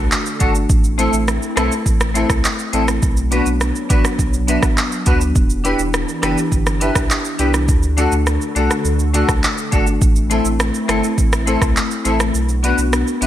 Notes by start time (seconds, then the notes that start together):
Already playing: D3 D4 F#4 A4
0.12 clap, shaker
0.26 shaker
0.40 G1 A3 D4 F#4 A4 D5, kick, closed hi-hat, shaker
0.55 muted clean electric guitar stroke, shaker
0.70 A1 A3 C4 E4, kick, shaker
0.84 shaker
0.98 A3 C4 E4 A4 C5, closed hi-hat, shaker
1.13 A1, shaker
1.28 cross-stick, shaker
1.43 shaker
1.56 B1 A3 C4 E4 A4 B4, cross-stick, closed hi-hat, shaker
1.72 shaker
1.86 A1, kick, shaker
2.00 cross-stick, shaker
2.14 A3 C4 E4 A4 C5, closed hi-hat, shaker
2.30 C2, kick, cross-stick, shaker
2.44 clap, shaker
2.59 shaker
2.73 A1 A3 C4 E4 A4 D5, closed hi-hat, shaker
2.88 muted clean electric guitar stroke, cross-stick, shaker
3.02 B1 F#3 B3 D4, kick, shaker
3.17 shaker
3.31 B3 D4 F#4 B4 D5, closed hi-hat, shaker
3.46 B1, shaker
3.61 cross-stick, shaker
3.75 shaker
3.89 A1 B3 D4 F#4 B4 D5, kick, closed hi-hat, shaker
4.05 cross-stick, shaker
4.19 B1, kick, shaker
4.33 shaker
4.47 B3 D4 F#4 B4 E5, closed hi-hat, shaker
4.63 A1, kick, cross-stick, shaker
4.78 clap, shaker
4.92 shaker
5.06 D2 B3 D4 F#4 B4 D5, kick, closed hi-hat, shaker
5.21 muted clean electric guitar stroke, shaker
5.35 E1 E3 G4, kick, shaker
5.50 shaker
5.64 D4 E4 G4 B4 D5, closed hi-hat, shaker
5.79 E1, shaker
5.94 cross-stick, shaker
6.08 shaker
6.22 F#1 D4 E4 G4 B4 D5, cross-stick, closed hi-hat, shaker
6.38 shaker
6.52 G1, kick, shaker
6.66 cross-stick, shaker
6.80 D4 E4 G4 B4 E5, closed hi-hat, shaker
6.95 B1, kick, cross-stick, shaker
7.10 clap, shaker
7.25 shaker
7.39 C2 D4 E4 G4 B4 D5, closed hi-hat, shaker
7.54 muted clean electric guitar stroke, cross-stick, shaker
7.68 D2 D3 F#4 A4, kick, shaker
7.83 shaker
7.97 A3 D4 F#4 A4 D5, closed hi-hat, shaker
8.12 D2, shaker
8.27 cross-stick, shaker
8.41 shaker
8.55 C2 A3 D4 F#4 A4 D5, closed hi-hat, shaker
8.71 cross-stick, shaker
8.85 D2, shaker
8.99 shaker
9.13 A3 D4 F#4 A4 D5, closed hi-hat, shaker
9.29 C2, kick, cross-stick, shaker
9.44 clap, shaker
9.58 shaker
9.72 G1 A3 D4 F#4 A4 D5, kick, closed hi-hat, shaker
9.87 muted clean electric guitar stroke, shaker
10.01 A1 A3 C4 E4, kick, shaker
10.16 shaker
10.30 A3 C4 E4 A4 C5, closed hi-hat, shaker
10.45 A1, shaker
10.60 cross-stick, shaker
10.74 shaker
10.88 G1 A3 C4 E4 A4 C5, cross-stick, closed hi-hat, shaker
11.04 shaker
11.18 A1, kick, shaker
11.33 cross-stick, shaker
11.46 A3 C4 E4 A4 C5, closed hi-hat, shaker
11.62 C2, kick, cross-stick, shaker
11.77 clap, shaker
11.91 shaker
12.05 A1 A3 C4 E4 A4 C5, closed hi-hat, shaker
12.20 muted clean electric guitar stroke, cross-stick, shaker
12.34 B1 B3 D4 F#4, shaker
12.49 shaker
12.63 B3 D4 F#4 B4 D5, closed hi-hat, shaker
12.78 B1, shaker
12.93 cross-stick, shaker
13.07 shaker
13.21 A1 B3 D4 F#4 B4 E5, closed hi-hat, shaker